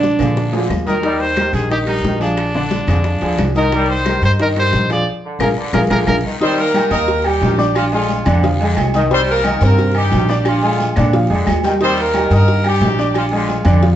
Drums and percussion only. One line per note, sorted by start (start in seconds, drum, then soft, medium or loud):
0.03 high bongo medium
0.03 high conga medium
0.03 short guiro medium
0.19 high bongo soft
0.19 high conga soft
0.19 low conga medium
0.19 high timbale medium
0.19 short guiro medium
0.19 claves medium
0.36 high bongo medium
0.36 high conga soft
0.36 low conga medium
0.36 long guiro medium
0.53 high conga soft
0.53 low timbale loud
0.70 high bongo medium
0.70 low bongo medium
0.70 high conga medium
0.70 short guiro medium
0.70 claves medium
0.86 high bongo soft
0.86 high conga medium
0.86 low timbale medium
0.86 short guiro medium
1.03 high bongo medium
1.03 high conga soft
1.03 high timbale medium
1.03 long guiro medium
1.21 high conga soft
1.36 high bongo medium
1.36 high conga medium
1.36 high timbale medium
1.36 short guiro medium
1.36 claves medium
1.53 high bongo soft
1.53 high conga soft
1.53 high timbale medium
1.53 short guiro medium
1.71 high bongo medium
1.71 high conga soft
1.71 long guiro medium
1.87 high bongo soft
1.87 high conga soft
1.87 high timbale medium
1.87 claves medium
2.04 high bongo medium
2.04 low bongo medium
2.04 high conga medium
2.04 low timbale medium
2.04 short guiro medium
2.21 high bongo soft
2.21 high conga soft
2.21 high timbale medium
2.21 short guiro medium
2.37 high bongo medium
2.37 high timbale medium
2.37 long guiro medium
2.37 claves medium
2.54 high conga soft
2.71 high bongo medium
2.71 high conga medium
2.71 high timbale medium
2.71 short guiro medium
2.88 high bongo soft
2.88 high conga soft
2.88 low conga medium
2.88 high timbale medium
2.88 short guiro medium
2.88 claves medium
3.04 high bongo medium
3.04 high conga soft
3.04 long guiro medium
3.22 high conga soft
3.22 high timbale medium
3.38 high bongo medium
3.38 low bongo medium
3.38 high conga medium
3.38 high timbale medium
3.38 low timbale medium
3.38 short guiro medium
3.38 claves medium
3.55 high bongo soft
3.55 high conga medium
3.55 short guiro medium
3.72 high bongo medium
3.72 high timbale medium
3.72 long guiro medium
3.90 high conga soft
4.05 high bongo medium
4.05 high conga medium
4.05 high timbale medium
4.05 short guiro medium
4.05 claves medium
4.23 high bongo soft
4.23 high conga soft
4.23 high timbale medium
4.23 short guiro medium
4.39 high bongo medium
4.39 high conga soft
4.39 long guiro medium
4.56 high bongo soft
4.56 high conga soft
4.56 high timbale medium
4.56 claves medium
4.73 high bongo medium
4.73 low bongo medium
4.73 high conga medium
4.73 short guiro medium
4.90 high bongo soft
4.90 high conga soft
4.90 high timbale medium
4.90 short guiro medium
5.40 low bongo medium
5.40 high conga loud
5.40 high timbale medium
5.40 long guiro medium
5.40 claves loud
5.74 low bongo loud
5.74 high conga loud
5.74 high timbale loud
5.74 claves loud
5.90 low bongo medium
5.90 high conga medium
5.90 high timbale loud
5.90 long guiro medium
5.90 claves medium
6.07 low bongo medium
6.07 high conga loud
6.07 high timbale loud
6.07 long guiro loud
6.07 claves loud
6.41 cowbell loud
6.41 high conga soft
6.41 long guiro medium
6.58 cowbell medium
6.58 high conga soft
6.58 low agogo medium
6.74 cowbell medium
6.74 high conga medium
6.74 low timbale medium
6.74 low agogo loud
6.74 short guiro medium
6.74 claves medium
6.91 cowbell medium
6.91 high conga soft
6.91 low agogo medium
6.91 short guiro medium
7.08 cowbell loud
7.08 high conga soft
7.08 long guiro medium
7.24 high conga soft
7.24 low agogo loud
7.24 claves medium
7.42 cowbell medium
7.42 high conga medium
7.42 low timbale medium
7.42 low agogo medium
7.42 short guiro medium
7.59 high conga medium
7.59 short guiro medium
7.75 cowbell loud
7.75 high conga soft
7.75 low agogo loud
7.75 long guiro medium
7.75 claves medium
7.92 low agogo medium
8.09 cowbell medium
8.09 high conga medium
8.09 low timbale medium
8.09 low agogo medium
8.09 short guiro medium
8.26 high conga medium
8.26 low conga medium
8.26 low agogo loud
8.26 short guiro medium
8.26 claves medium
8.43 cowbell loud
8.43 high conga soft
8.43 low conga medium
8.43 long guiro medium
8.60 high conga soft
8.60 low agogo medium
8.77 cowbell medium
8.77 high conga medium
8.77 low timbale medium
8.77 low agogo loud
8.77 short guiro medium
8.77 claves medium
8.94 cowbell medium
8.94 high conga medium
8.94 short guiro medium
9.11 cowbell loud
9.11 high conga soft
9.11 long guiro medium
9.27 cowbell medium
9.27 high conga soft
9.27 low agogo medium
9.44 cowbell medium
9.44 high conga loud
9.44 low timbale medium
9.44 low agogo loud
9.44 short guiro medium
9.44 claves medium
9.61 cowbell medium
9.61 low agogo medium
9.61 short guiro medium
9.78 cowbell loud
9.78 high conga soft
9.78 long guiro medium
9.95 high conga soft
9.95 low agogo loud
9.95 claves medium
10.11 cowbell medium
10.11 high conga medium
10.11 low timbale medium
10.11 low agogo medium
10.11 short guiro medium
10.29 short guiro medium
10.45 cowbell loud
10.45 high conga soft
10.45 low agogo loud
10.45 long guiro medium
10.45 claves medium
10.62 high conga soft
10.62 low agogo medium
10.79 cowbell medium
10.79 high conga medium
10.79 low timbale medium
10.79 low agogo medium
10.79 short guiro medium
10.96 high conga loud
10.96 low conga medium
10.96 low agogo loud
10.96 short guiro medium
10.96 claves medium
11.13 cowbell loud
11.13 high conga soft
11.13 long guiro medium
11.30 high conga soft
11.30 low agogo medium
11.46 cowbell medium
11.46 high conga medium
11.46 low timbale medium
11.46 low agogo loud
11.46 short guiro medium
11.46 claves medium
11.63 cowbell medium
11.63 high conga medium
11.63 short guiro medium
11.80 cowbell loud
11.80 high conga soft
11.80 long guiro medium
11.97 cowbell medium
11.97 high conga soft
11.97 low agogo medium
12.14 cowbell medium
12.14 high conga medium
12.14 low timbale medium
12.14 low agogo loud
12.14 short guiro medium
12.14 claves medium
12.31 cowbell medium
12.31 low agogo medium
12.31 short guiro medium
12.48 cowbell loud
12.48 high conga soft
12.48 long guiro medium
12.64 high conga soft
12.64 low agogo loud
12.64 claves medium
12.81 cowbell medium
12.81 high conga medium
12.81 low timbale medium
12.81 low agogo medium
12.81 short guiro medium
12.99 short guiro medium
13.14 cowbell loud
13.14 high conga soft
13.14 low agogo loud
13.14 long guiro medium
13.14 claves medium
13.31 high conga soft
13.31 low agogo medium
13.49 cowbell medium
13.49 high conga medium
13.49 low timbale medium
13.49 low agogo medium
13.49 short guiro medium
13.65 high conga loud
13.65 low conga medium
13.65 low agogo loud
13.65 short guiro medium
13.65 claves medium
13.83 cowbell loud
13.83 long guiro medium